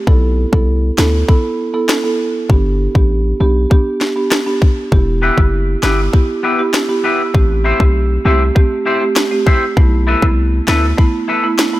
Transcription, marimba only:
0.07 B3 E4 A4
0.52 B3 E4 A4
0.98 B3 E4 A4
1.28 B3 E4 A4
1.74 B3 E4 A4
2.04 B3 E4 A4
2.49 B3 D4 G4
2.95 B3 D4 G4
3.40 B3 D4 G4
3.70 B3 D4 G4
4.16 B3 D4 G4
4.46 B3 D4 G4
4.92 B3 E4 G4
5.37 B3 E4 G4
5.83 B3 E4 G4
6.13 B3 E4 G4
6.58 B3 E4 G4
6.89 B3 E4 G4
7.34 A3 C4 G4
7.80 A3 C4 G4
8.25 A3 C4 G4
8.55 A3 C4 G4
9.01 A3 C4 G4
9.31 A3 C4 G4
9.77 A3 B3 E4
10.22 A3 B3 E4
10.68 A3 B3 E4
10.98 A3 B3 E4
11.43 A3 B3 E4
11.74 A3 B3 E4

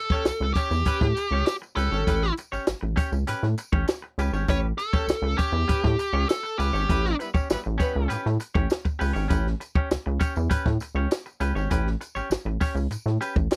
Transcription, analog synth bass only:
0.10 C#2
0.25 C#2
0.40 C#2
0.71 E2
0.86 A2
1.01 A2
1.31 C#2
1.77 C#2
1.92 G#1
2.07 A1
2.53 A1
2.68 A1
2.83 A1
3.12 C#2
3.29 A2
3.43 A2
3.72 A1
4.18 C#2
4.33 G#1
4.48 A1
4.93 C#2
5.07 C#2
5.22 C#2
5.52 E2
5.69 A2
5.84 A2
6.13 C#2
6.59 C#2
6.73 G#1
6.90 A1
7.34 A1
7.51 A1
7.66 A1
7.96 C#2
8.11 A2
8.26 A2
8.55 A1
9.01 C#2
9.16 G#1
9.30 A1
9.75 C#2
9.91 C#2
10.07 C#2
10.37 E2
10.51 A2
10.66 A2
10.95 C#2
11.41 C#2
11.55 G#1
11.71 A1
12.16 A1
12.30 A1
12.45 A1
12.75 C#2
12.91 A2
13.06 A2
13.36 A1

